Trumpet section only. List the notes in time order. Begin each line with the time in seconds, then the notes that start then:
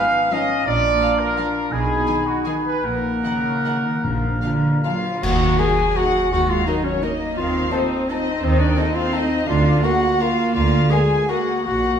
Already playing: F5
0.32 D#5
0.66 D5
1.19 A#4
1.72 G#4
2.27 F#4
2.46 G#4
2.66 B4
2.84 A#4